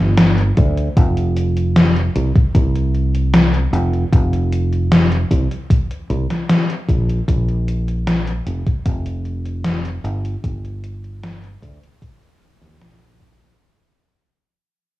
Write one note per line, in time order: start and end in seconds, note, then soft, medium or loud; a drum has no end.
0.00 0.50 G1 medium
0.17 snare loud
0.17 closed hi-hat loud
0.38 closed hi-hat soft
0.57 0.88 D2 loud
0.57 kick loud
0.57 closed hi-hat medium
0.77 closed hi-hat soft
0.97 2.08 F1 loud
0.97 kick loud
0.97 closed hi-hat medium
1.17 closed hi-hat soft
1.36 closed hi-hat medium
1.57 closed hi-hat soft
1.76 snare loud
1.76 closed hi-hat medium
1.96 closed hi-hat soft
2.15 2.31 C2 medium
2.15 closed hi-hat medium
2.35 kick loud
2.35 closed hi-hat soft
2.55 3.66 C2 loud
2.55 kick loud
2.55 closed hi-hat medium
2.75 closed hi-hat soft
2.95 closed hi-hat soft
3.15 closed hi-hat soft
3.34 snare loud
3.34 closed hi-hat medium
3.54 closed hi-hat soft
3.73 4.03 F1 loud
3.73 closed hi-hat medium
3.93 closed hi-hat soft
4.12 5.24 F1 loud
4.12 kick loud
4.12 closed hi-hat medium
4.33 closed hi-hat soft
4.52 closed hi-hat medium
4.73 closed hi-hat soft
4.92 snare loud
4.92 closed hi-hat medium
5.12 closed hi-hat soft
5.31 5.46 C2 medium
5.31 kick medium
5.31 closed hi-hat medium
5.51 closed hi-hat soft
5.70 kick loud
5.70 closed hi-hat medium
5.91 closed hi-hat soft
6.10 6.25 C2 medium
6.10 closed hi-hat soft
6.30 snare soft
6.30 closed hi-hat soft
6.49 snare loud
6.49 closed hi-hat medium
6.70 closed hi-hat soft
6.89 7.19 A#1 medium
6.89 kick loud
6.89 closed hi-hat medium
7.09 closed hi-hat soft
7.28 8.39 A#1 loud
7.28 kick loud
7.28 closed hi-hat medium
7.49 closed hi-hat soft
7.68 closed hi-hat medium
7.88 closed hi-hat soft
8.07 snare loud
8.07 closed hi-hat medium
8.27 closed hi-hat soft
8.46 8.62 F1 medium
8.46 closed hi-hat medium
8.67 kick loud
8.67 closed hi-hat soft
8.86 9.97 F1 loud
8.86 kick loud
8.86 closed hi-hat loud
9.06 closed hi-hat soft
9.25 closed hi-hat soft
9.46 closed hi-hat soft
9.65 snare loud
9.65 closed hi-hat loud
9.85 closed hi-hat soft
10.04 10.35 G1 loud
10.04 closed hi-hat medium
10.25 closed hi-hat soft
10.44 11.55 G1 loud
10.44 kick loud
10.44 closed hi-hat loud
10.65 closed hi-hat soft
10.84 closed hi-hat medium
11.04 closed hi-hat soft
11.23 snare loud
11.23 closed hi-hat loud
11.44 closed hi-hat soft
11.62 11.78 D2 medium
11.62 kick medium
11.62 closed hi-hat medium
11.83 closed hi-hat soft
12.02 kick loud
12.02 closed hi-hat loud
12.22 closed hi-hat soft
12.42 closed hi-hat soft
12.61 12.80 D#2 medium
12.61 snare soft
12.61 closed hi-hat soft
12.80 13.52 A#1 medium
12.80 snare loud
12.80 closed hi-hat loud
13.02 closed hi-hat soft
13.20 kick loud
13.20 closed hi-hat medium
13.41 closed hi-hat soft